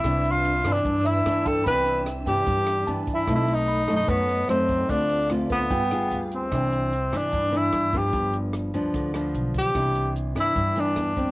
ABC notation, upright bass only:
X:1
M:4/4
L:1/8
Q:1/4=148
K:C
V:1 name="Upright bass" clef=bass
C,,3 G,, G,,2 G,,2 | C,,3 G,, G,,2 G,,2 | B,,,3 ^F,, F,,2 F,,2 | D,,3 D,, G,,,2 D,,2 |
C,,3 G,, G,,2 G,,2 | G,,,3 D,, D,,2 B,,,2 | C,,3 G,, G,,2 E,,2 |]